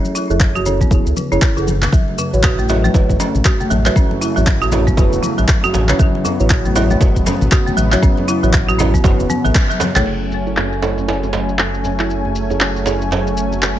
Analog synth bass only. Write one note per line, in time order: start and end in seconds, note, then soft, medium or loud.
0.30 0.85 F#1 medium
0.91 1.01 E1 loud
1.06 1.13 C#2 loud
1.32 1.38 F#1 medium
1.57 1.87 F#1 medium
1.93 2.03 A1 medium
2.33 2.89 A1 medium
2.94 3.04 F#1 loud
3.09 3.16 E1 medium
3.35 3.42 A1 medium
3.71 3.89 A1 medium
3.96 4.06 A1 loud
4.37 4.92 A1 medium
4.98 5.08 F#1 loud
5.13 5.20 E1 loud
5.38 5.45 A1 medium
5.74 5.93 A1 medium
5.99 6.09 A1 medium
6.40 6.95 A1 medium
7.01 7.11 F#1 loud
7.16 7.23 E1 medium
7.41 7.48 A1 medium
7.77 7.96 A1 medium
8.03 8.13 A1 medium
8.43 8.99 A1 medium
9.04 9.14 F#1 loud
9.19 9.26 E1 loud
9.45 9.52 A1 medium
9.96 10.03 A1 loud
10.06 13.79 F#1 medium